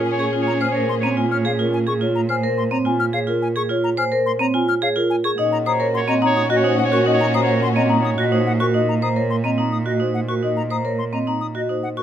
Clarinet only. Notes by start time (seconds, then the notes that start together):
0.11 C#5
0.41 C#5
0.70 C#5
1.00 C#5
1.29 C#5
1.59 C#5
5.38 C#5
5.67 C#5
5.97 C#5
6.25 C#5
6.56 C#5
6.84 C#5
7.13 C#5
7.43 C#5
7.72 C#5
8.01 C#5
8.31 C#5